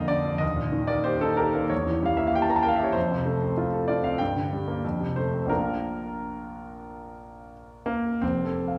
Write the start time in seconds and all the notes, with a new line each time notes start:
Already playing: A#1 F2 D3 A#3 D4 F4 D5 D#5 F5 G5
0.08 D3 D5
0.25 F2
0.38 D#2 D#5
0.56 A#2
0.72 D#3
0.87 A#3 D5
1.04 G4 C5
1.21 D#4 A4
1.37 G4 A#4
1.54 A#3
1.70 E2 C#5
1.86 E3
2.02 G3 F5
2.17 A#3 E5
2.27 F5
2.33 G4 G5
2.42 A5
2.50 A#3 A#5
2.56 A5
2.63 A#4 G5
2.68 F5
2.76 G4 E5
2.84 C#5
2.92 F2 C5
3.11 C3
3.26 A3
3.42 C4
3.57 F4
3.73 A4
3.88 F4 D5
4.04 C4 F5
4.18 G2 G5
4.36 D3
4.53 G3
4.68 A#3
4.84 F2
5.00 C3
5.16 A3 C5
5.34 C4
5.46 A#1 A#3 D4 F4 A#4
7.86 A#3
8.21 F1 C4
8.45 A4
8.68 F5